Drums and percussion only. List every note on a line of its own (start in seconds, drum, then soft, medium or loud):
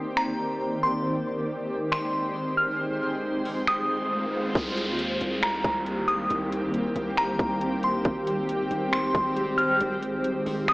0.17 finger snap loud
1.92 finger snap loud
3.45 open hi-hat medium
3.67 finger snap loud
4.55 kick loud
4.55 closed hi-hat medium
4.77 closed hi-hat medium
4.99 closed hi-hat medium
5.21 closed hi-hat medium
5.42 finger snap loud
5.42 closed hi-hat medium
5.64 kick medium
5.64 closed hi-hat medium
5.86 closed hi-hat medium
6.08 closed hi-hat medium
6.30 closed hi-hat medium
6.52 closed hi-hat medium
6.74 closed hi-hat medium
6.96 closed hi-hat medium
7.18 finger snap loud
7.18 closed hi-hat medium
7.40 kick loud
7.40 closed hi-hat medium
7.62 closed hi-hat medium
7.83 closed hi-hat medium
8.05 kick loud
8.05 closed hi-hat medium
8.27 closed hi-hat medium
8.49 closed hi-hat medium
8.71 closed hi-hat medium
8.93 finger snap loud
8.93 closed hi-hat medium
9.15 kick medium
9.15 closed hi-hat medium
9.37 closed hi-hat medium
9.59 closed hi-hat medium
9.81 closed hi-hat medium
10.03 closed hi-hat medium
10.24 closed hi-hat medium
10.46 open hi-hat medium
10.68 finger snap loud
10.68 closed hi-hat medium